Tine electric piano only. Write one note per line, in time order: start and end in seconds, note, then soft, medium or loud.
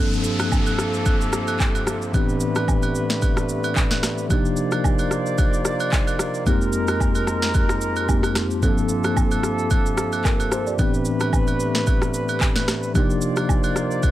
0.00 2.09 G2 medium
0.00 2.10 F3 medium
0.00 2.10 A#3 medium
0.00 2.10 C4 medium
0.00 2.11 D4 medium
0.00 2.11 A4 medium
2.13 4.26 A2 medium
2.13 4.26 E3 medium
2.13 4.26 B3 medium
2.13 4.27 C4 medium
2.13 4.27 D4 medium
2.13 4.27 G4 medium
4.29 6.42 C3 medium
4.29 6.42 F3 medium
4.29 6.42 A#3 medium
4.29 6.43 D4 medium
4.29 6.43 D#4 medium
4.29 6.43 G4 medium
6.45 8.05 F2 medium
6.45 6.53 G3 medium
6.45 8.05 A#3 medium
6.45 8.06 C4 medium
6.45 8.06 D#4 medium
6.45 8.06 G4 medium
6.52 8.07 G#3 medium
8.08 8.62 F2 medium
8.08 8.63 G#3 soft
8.08 8.61 A#3 medium
8.08 8.62 C4 soft
8.08 8.63 D#4 soft
8.08 8.63 G4 medium
8.61 10.74 G2 medium
8.61 10.74 F3 medium
8.61 10.75 A#3 medium
8.61 10.75 C4 medium
8.61 10.75 D4 medium
8.61 10.22 A4 medium
10.25 10.51 A#4 medium
10.52 10.66 C5 medium
10.67 10.93 D5 medium
10.77 12.90 A2 medium
10.77 12.91 E3 medium
10.77 12.91 B3 medium
10.77 12.91 C4 medium
10.77 12.92 D4 medium
10.77 12.92 G4 medium
12.94 14.11 C3 medium
12.94 14.11 F3 medium
12.94 14.11 A#3 medium
12.94 14.11 D4 medium
12.94 14.11 D#4 medium
12.94 14.11 G4 medium